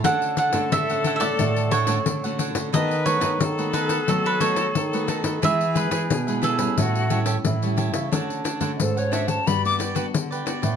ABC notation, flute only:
X:1
M:4/4
L:1/16
Q:1/4=89
K:A
V:1 name="Flute"
A12- A2 z2 | B4 A12 | G8 F2 z2 E4 | [K:D] z4 A c e a b d' z6 |]